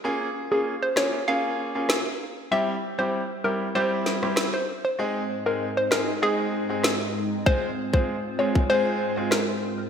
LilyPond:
<<
  \new Staff \with { instrumentName = "Synth pluck" } { \time 4/4 \key aes \major \tempo 4 = 97 r8. aes'16 r16 c''16 des''16 r16 f''8. r4 r16 | e''8 r16 c''16 r8 bes'16 r16 c''8. r8 c''16 r16 c''16 | r8. bes'16 r16 c''16 bes'16 r16 aes'8. r4 r16 | c''8 r16 c''16 r8 des''16 r16 c''8. r16 bes'8. r16 | }
  \new Staff \with { instrumentName = "Analog synth pad" } { \time 4/4 \key aes \major << { r1 | r1 | <ees' ees''>1 | <f' c''>1 | } \\ { r1 | r1 | <aes, aes c'>1~ | <aes, aes c'>1 | } >> }
  \new Staff \with { instrumentName = "Grand piano" } { \time 4/4 \key aes \major <bes des' f' aes'>16 r8 <bes des' f' aes'>16 r8 <bes des' f' aes'>16 r16 <bes des' f' aes'>8. <bes des' f' aes'>16 r4 | <g c' e' g'>16 r8 <g c' e' g'>16 r8 <g c' e' g'>16 r16 <g c' e' g'>8. <g c' e' g'>16 r4 | <aes c' ees' aes'>16 r8 <aes c' ees' aes'>16 r8 <aes c' ees' aes'>16 r16 <aes c' ees' aes'>8. <aes c' ees' aes'>16 r4 | <aes c' f' aes'>16 r8 <aes c' f' aes'>16 r8 <aes c' f' aes'>16 r16 <aes c' f' aes'>8. <aes c' f' aes'>16 r4 | }
  \new DrumStaff \with { instrumentName = "Drums" } \drummode { \time 4/4 r4 r8 <ss sn>8 r4 <ss sn>4 | r4 r4 r8 sn16 ss16 <ss sn>4 | r4 r8 <ss sn>8 r4 <ss sn>4 | bd8. bd16 r8. bd16 r4 <ss sn>4 | }
>>